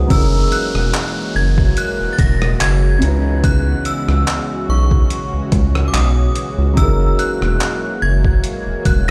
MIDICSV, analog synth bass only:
0, 0, Header, 1, 2, 480
1, 0, Start_track
1, 0, Tempo, 833333
1, 59, Time_signature, 4, 2, 24, 8
1, 5246, End_track
2, 0, Start_track
2, 0, Title_t, "Analog synth bass"
2, 0, Program_c, 0, 38
2, 59, Note_on_c, 0, 30, 118
2, 266, Note_off_c, 0, 30, 0
2, 430, Note_on_c, 0, 28, 91
2, 525, Note_off_c, 0, 28, 0
2, 780, Note_on_c, 0, 30, 100
2, 987, Note_off_c, 0, 30, 0
2, 1152, Note_on_c, 0, 28, 46
2, 1195, Note_off_c, 0, 28, 0
2, 1259, Note_on_c, 0, 28, 98
2, 1466, Note_off_c, 0, 28, 0
2, 1501, Note_on_c, 0, 30, 99
2, 1707, Note_off_c, 0, 30, 0
2, 1742, Note_on_c, 0, 37, 110
2, 2155, Note_off_c, 0, 37, 0
2, 2352, Note_on_c, 0, 37, 100
2, 2446, Note_off_c, 0, 37, 0
2, 2702, Note_on_c, 0, 35, 93
2, 2908, Note_off_c, 0, 35, 0
2, 3072, Note_on_c, 0, 37, 50
2, 3115, Note_off_c, 0, 37, 0
2, 3181, Note_on_c, 0, 37, 94
2, 3387, Note_off_c, 0, 37, 0
2, 3421, Note_on_c, 0, 35, 91
2, 3627, Note_off_c, 0, 35, 0
2, 3791, Note_on_c, 0, 37, 93
2, 3901, Note_on_c, 0, 30, 116
2, 3909, Note_off_c, 0, 37, 0
2, 4107, Note_off_c, 0, 30, 0
2, 4272, Note_on_c, 0, 28, 94
2, 4366, Note_off_c, 0, 28, 0
2, 4622, Note_on_c, 0, 30, 103
2, 4828, Note_off_c, 0, 30, 0
2, 4991, Note_on_c, 0, 28, 51
2, 5035, Note_off_c, 0, 28, 0
2, 5101, Note_on_c, 0, 28, 97
2, 5246, Note_off_c, 0, 28, 0
2, 5246, End_track
0, 0, End_of_file